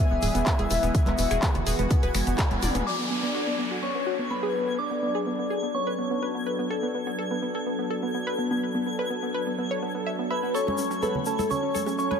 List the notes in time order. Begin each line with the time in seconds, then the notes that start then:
Already playing: E3 G#3 B3 G#4 G#5
0.00 E5
0.11 E1 B3
0.22 D1 G#4, open hi-hat, high conga, shaker
0.34 E1 B3, closed hi-hat, high bongo, shaker
0.46 B3, kick, clap, closed hi-hat, shaker
0.59 E1 G#4, closed hi-hat, high conga
0.70 E1 B3, open hi-hat, high bongo, shaker
0.83 E1 B3, closed hi-hat, shaker
0.94 F#4, kick, closed hi-hat, shaker
1.06 E1 B3, clap, closed hi-hat, high conga
1.18 E1 B3, open hi-hat, high bongo, shaker
1.31 E1 G#4, finger snap, closed hi-hat, shaker
1.42 B3, kick, clap, closed hi-hat, high conga, shaker
1.54 E1 B3, closed hi-hat, high bongo, low conga
1.67 E1 G#4, open hi-hat, shaker
1.78 E1 B3, closed hi-hat, high conga, shaker
1.91 B3, kick, closed hi-hat, shaker
2.03 E1 B4, closed hi-hat, high bongo
2.15 F#1 B3, finger snap, open hi-hat, high conga, shaker
2.27 F#1 B3, closed hi-hat, shaker
2.38 C#5, kick, clap, closed hi-hat, high bongo, shaker
2.51 E1 B3, closed hi-hat, high conga
2.63 E1 D5, open hi-hat, high tom, shaker
2.75 E1 B3, closed hi-hat, mid tom, shaker
2.87 F#3 B3 D4 F#4 A4 D5 D6 G#6, downlifter
2.99 B3
3.11 B3
3.23 B3, finger snap
3.35 F#4
3.47 B3
3.59 B3
3.71 F#4
3.83 B3 C#5 C#6
3.95 B3
4.07 F#4
4.19 B3
4.30 B3 B4 B5
4.43 G#4
4.55 B3
4.67 B3
4.79 D5 D6
4.91 B3
5.03 B3
5.15 G#4, finger snap
5.26 B3
5.39 B3
5.50 G#4
5.63 B3, closed hi-hat
5.74 B3 C#5 C#6, closed hi-hat
5.87 B4
5.98 B3
6.11 B3, closed hi-hat
6.23 B4
6.35 B3
6.46 B4
6.59 B3, closed hi-hat
6.70 A4
6.83 B3
6.95 B3
7.07 B3, finger snap
7.19 A4
7.31 B3
7.42 B3
7.55 A4
7.66 B3, closed hi-hat
7.79 B3
7.90 A4
8.03 B3
8.14 B3, closed hi-hat
8.27 B4
8.39 B3
8.51 B3, closed hi-hat
8.62 closed hi-hat
8.75 B3
8.86 B3
8.99 B4, finger snap
9.10 B3, closed hi-hat
9.23 B3
9.34 B4
9.47 B3
9.58 B3, closed hi-hat
9.71 C#5
9.82 B3
9.95 B3, closed hi-hat
10.06 E5
10.19 B3
10.30 B4 E5 B5
10.43 B3
10.54 A3 C#4 A4 C#5 C#6, shaker
10.67 C#4, high bongo, high conga
10.78 C#4, shaker
10.91 C#4, finger snap, shaker
11.02 A4 B4 B5, high bongo, high conga, shaker
11.15 C#4, low conga
11.26 C#4 A4 A5, shaker
11.39 A4, high conga, shaker
11.50 C#4 C#5 C#6, closed hi-hat, high bongo, low conga, shaker
11.63 C#4
11.75 A4, high conga, shaker
11.86 C#4, closed hi-hat, high bongo, shaker
11.98 C#4 C#5 C#6, closed hi-hat, shaker
12.11 B4, high conga